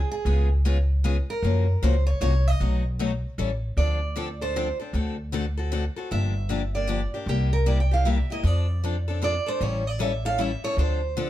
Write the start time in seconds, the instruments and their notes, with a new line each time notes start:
Already playing: steel-string acoustic guitar G#4
0.11 steel-string acoustic guitar G#4
0.25 upright bass C#2, steel-string acoustic guitar C#3 G#3 B3 F4 G#4
0.65 steel-string acoustic guitar C#3 G#3 B3 F4 G#4
1.04 steel-string acoustic guitar C#3 G#3 B3 F4 G#4
1.30 steel-string acoustic guitar A#4
1.42 upright bass F#2, steel-string acoustic guitar C#3 F3 A#3 C#4 F#4
1.82 upright bass C#2, steel-string acoustic guitar C#3 F3 A#3 C#4 F#4 C5
2.07 steel-string acoustic guitar C#5
2.21 upright bass C2, steel-string acoustic guitar C#3 F3 A#3 C#4 F#4 C#5
2.48 steel-string acoustic guitar D#5
2.60 upright bass B1, steel-string acoustic guitar B2 F#3 A3 D#4 F#4
2.99 steel-string acoustic guitar B2 F#3 A3 D#4 F#4
3.38 upright bass A1, steel-string acoustic guitar E3 G3 C#4 E4 A4
3.77 upright bass D2, steel-string acoustic guitar D3 F3 C4 D4 A4 D5
4.16 steel-string acoustic guitar D3 F3 C4 D4 A4
4.41 steel-string acoustic guitar C4 D4 A4 C5
4.56 steel-string acoustic guitar D3 F3 C4 D4 A4
4.80 steel-string acoustic guitar C4 D4 A4
4.93 upright bass D2, steel-string acoustic guitar D3 A3 C4 F#4 A4
5.32 steel-string acoustic guitar D3 A3 C4 F#4 A4
5.57 steel-string acoustic guitar C4 F#4 A4
5.72 steel-string acoustic guitar D3 A3 C4 F#4 A4
5.96 steel-string acoustic guitar C4 F#4 A4
6.11 upright bass G1, steel-string acoustic guitar D3 F3 A#3 D4 G4 E5
6.49 steel-string acoustic guitar D3 F3 A#3 D4 G4
6.75 steel-string acoustic guitar A#3 D4 G4 D5
6.87 steel-string acoustic guitar D3 F3 A#3 D4 G4
7.14 steel-string acoustic guitar A#3 D4 G4
7.26 upright bass C2, steel-string acoustic guitar C3 G3 A#3 E4 G4
7.53 steel-string acoustic guitar A#4
7.66 steel-string acoustic guitar C3 G3 A#3 E4 G4 D5
7.80 steel-string acoustic guitar G5
7.91 steel-string acoustic guitar A#3 E4 G4 F5
8.05 steel-string acoustic guitar C3 G3 A#3 E4 G4 E5
8.30 steel-string acoustic guitar A#3 E4 G4 D#5
8.43 upright bass F2, steel-string acoustic guitar F3 C4 D4 A4 D5
8.84 steel-string acoustic guitar F3 C4 D4 A4
9.08 steel-string acoustic guitar C4 D4 A4
9.22 steel-string acoustic guitar F3 C4 D4 A4 D5
9.46 steel-string acoustic guitar C4 D4 A4 C5
9.61 upright bass A1, steel-string acoustic guitar E3 G3 C#4 E4 A4 C#5
9.87 steel-string acoustic guitar D5
9.99 steel-string acoustic guitar E3 G3 C#4 E4 A4 E5
10.25 steel-string acoustic guitar C#4 E4 A4 F5
10.38 steel-string acoustic guitar E3 G3 C#4 E4 A4 E5
10.64 steel-string acoustic guitar C#4 E4 A4 C#5
10.77 upright bass D2, steel-string acoustic guitar D3 F3 C4 D4 A4 C5
11.17 steel-string acoustic guitar D3 F3 C4 D4 A4